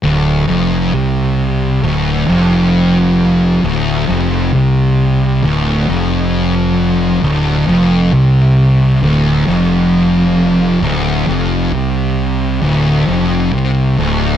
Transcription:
<<
  \new Staff \with { instrumentName = "Distorted electric guitar" } { \clef bass \time 4/4 \key d \minor \tempo 4 = 67 d,8 f,8 c4 d,8 f,4. | d,8 f,8 c4 d,8 f,4. | d,8 f,8 c4 d,8 f,4. | d,8 f,8 c4 d,8 f,8 c8 d,8 | }
  \new Staff \with { instrumentName = "Distorted electric guitar" } { \clef bass \time 4/4 \key d \minor d,8 f,8 c4 d,8 f,4. | d,8 f,8 c4 d,8 f,4. | d,8 f,8 c4 d,8 f,4. | d,8 f,8 c4 d,8 f,8 c8 d,8 | }
  \new Staff \with { instrumentName = "Fingered electric bass" } { \clef bass \time 4/4 \key d \minor d,,8 f,,8 c,4 d,,8 f,,4. | d,,8 f,,8 c,4 d,,8 f,,4. | d,,8 f,,8 c,4 d,,8 f,,4. | d,,8 f,,8 c,4 d,,8 f,,8 c,8 d,,8 | }
>>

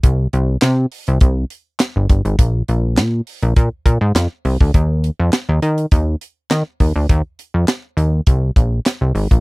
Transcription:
<<
  \new Staff \with { instrumentName = "Analog synth bass" } { \clef bass \time 4/4 \key ees \major \tempo 4 = 102 c,8 c,8 c8 r16 c,16 c,8 r8. g,,16 g,,16 aes,,16 | bes,,8 bes,,8 bes,8 r16 bes,,16 bes,16 r16 bes,16 aes,16 f,16 r16 c,16 d,16 | ees,8. f,16 r16 ees,16 ees8 ees,8 r8 ees16 r16 ees,16 d,16 | ees,16 r8 f,16 r8 ees,8 c,8 bes,,8 r16 c,16 aes,,16 bes,,16 | }
  \new DrumStaff \with { instrumentName = "Drums" } \drummode { \time 4/4 <hh bd>8 hh8 <hc hh sn>8 hho16 hh16 <hh bd>8 hh8 <hc hh sn>8 <hh bd>16 hh16 | <hh bd>8 hh8 <hc hh sn>8 hho16 hh16 <hh bd>8 <hh bd>8 <hc hh sn>8 hho16 bd16 | <hh bd>8 hh8 <hc hh sn>8 hh16 hh16 <hh bd>8 hh8 <hc hh sn>8 <hho bd>8 | <hh bd>8 hh8 <hc hh sn>8 hh8 <hh bd>8 <hh bd>8 <hc hh sn>8 hho16 <hh bd>16 | }
>>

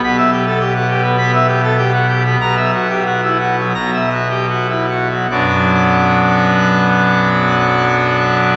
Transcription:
<<
  \new Staff \with { instrumentName = "Pipe organ" } { \time 4/4 \key b \minor \tempo 4 = 84 b''16 e''16 g'16 a'16 g'16 fis'16 g'16 b16 b''16 e''16 g'16 a'16 g'16 fis'16 g'16 b16 | ais''16 e''16 fis'16 g'16 fis'16 e'16 fis'16 fis16 ais''16 e''16 fis'16 g'16 fis'16 e'16 fis'16 fis16 | <b,, fis, fis b d' fis'>1 | }
  \new Staff \with { instrumentName = "Pipe organ" } { \clef bass \time 4/4 \key b \minor << { b,2 b16 r4. r16 | b,2 b,2 | r1 | } \\ { b,,1 | b,,2 b,,2 | r1 | } >> }
>>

